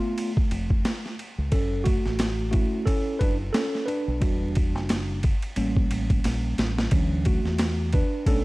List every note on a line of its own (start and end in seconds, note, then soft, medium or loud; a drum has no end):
0.00 1.15 A3 medium
0.00 0.30 B3 soft
0.00 0.31 F4 medium
0.18 ride medium
0.37 kick medium
0.51 0.80 F1 medium
0.51 ride medium
0.70 kick medium
0.85 snare loud
0.85 hi-hat pedal medium
0.85 ride medium
1.06 snare soft
1.19 ride soft
1.38 1.50 C#2 medium
1.52 1.97 F#1 medium
1.52 1.84 C#4 medium
1.52 1.87 A4 medium
1.52 kick medium
1.52 ride medium
1.84 2.49 A3 medium
1.84 2.48 F#4 medium
1.84 kick medium
1.84 ride medium
2.06 2.63 A1 medium
2.06 snare soft
2.19 snare medium
2.19 hi-hat pedal medium
2.19 ride medium
2.51 2.85 A3 medium
2.51 2.86 C#4 soft
2.51 3.50 E4 medium
2.51 2.84 F#4 medium
2.51 kick medium
2.51 ride medium
2.85 3.19 C#4 medium
2.85 3.21 A4 loud
2.85 kick medium
2.85 ride medium
3.19 3.49 F#1 medium
3.19 3.37 D4 medium
3.19 3.35 B4 medium
3.19 kick medium
3.19 ride medium
3.53 3.86 C#4 medium
3.53 3.85 A4 loud
3.53 snare loud
3.53 hi-hat pedal medium
3.53 ride medium
3.75 snare soft
3.86 4.20 D4 medium
3.86 4.50 B4 medium
3.86 ride soft
4.08 4.20 B1 medium
4.20 4.75 E1 loud
4.20 5.18 G3 soft
4.20 5.19 D4 soft
4.20 5.19 F#4 medium
4.20 kick loud
4.20 ride medium
4.55 kick medium
4.55 ride medium
4.75 5.32 F#1 medium
4.75 snare soft
4.89 snare medium
4.89 hi-hat pedal medium
4.89 ride medium
5.23 kick medium
5.23 ride medium
5.42 ride soft
5.56 5.85 A1 medium
5.56 6.88 G3 medium
5.56 6.88 A#3 soft
5.56 6.88 C#4 medium
5.56 ride medium
5.77 kick medium
5.90 6.19 A1 medium
5.90 ride medium
6.10 kick medium
6.10 ride soft
6.24 6.53 A#1 medium
6.24 snare medium
6.24 hi-hat pedal soft
6.24 ride medium
6.58 6.86 A1 medium
6.58 snare medium
6.58 ride soft
6.78 snare medium
6.91 7.37 D2 loud
6.91 7.39 E3 medium
6.91 7.39 F#3 soft
6.91 7.39 C#4 medium
6.91 kick medium
6.91 ride medium
7.25 7.89 A3 medium
7.25 7.89 F#4 medium
7.25 kick medium
7.25 ride medium
7.45 8.02 E2 medium
7.45 snare soft
7.59 snare medium
7.59 hi-hat pedal medium
7.59 ride medium
7.93 8.25 D4 medium
7.93 8.28 B4 medium
7.93 kick medium
7.93 ride soft
8.26 8.45 B1 loud
8.26 8.45 A3 medium
8.26 8.45 C#4 medium
8.26 8.45 D4 medium
8.26 8.45 A4 medium
8.26 kick medium
8.26 ride medium